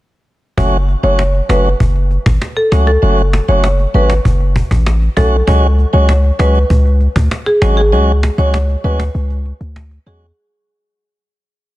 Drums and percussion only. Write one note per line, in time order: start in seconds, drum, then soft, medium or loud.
0.58 cajon bass loud
0.73 cajon slap soft
0.88 cajon slap soft
1.04 cajon slap soft
1.19 cajon slap medium
1.34 cajon slap soft
1.50 cajon slap medium
1.65 cajon slap soft
1.80 cajon bass medium
1.96 cajon slap soft
2.11 cajon slap soft
2.26 cajon bass loud
2.26 cajon slap medium
2.42 cajon slap loud
2.57 cajon slap soft
2.72 cajon slap medium
2.88 cajon slap soft
3.03 cajon slap soft
3.18 cajon slap soft
3.33 cajon slap loud
3.48 cajon slap soft
3.64 cajon slap medium
3.79 cajon slap soft
3.94 cajon slap soft
4.10 cajon slap medium
4.25 cajon bass medium
4.40 cajon slap soft
4.56 cajon bass loud
4.71 cajon bass loud
4.86 cajon slap loud
5.02 cajon slap soft
5.17 cajon bass medium
5.33 cajon slap soft
5.48 cajon bass loud
5.63 cajon slap soft
5.78 cajon slap soft
5.93 cajon slap soft
6.09 cajon slap loud
6.24 cajon slap soft
6.40 cajon slap medium
6.55 cajon slap soft
6.70 cajon bass medium
6.85 cajon slap soft
7.01 cajon slap soft
7.16 cajon bass loud
7.16 cajon slap medium
7.31 cajon slap loud
7.47 cajon slap soft
7.62 cajon slap medium
7.77 cajon slap soft
7.93 cajon slap soft
8.08 cajon slap soft
8.23 cajon slap loud
8.39 cajon slap soft
8.54 cajon slap medium
8.69 cajon slap soft
8.85 cajon slap soft
9.00 cajon slap loud
9.15 cajon slap soft
9.30 cajon slap soft
9.46 cajon slap soft
9.61 cajon slap soft
9.76 cajon slap loud
9.91 cajon slap soft
10.07 cajon slap soft
10.22 cajon slap soft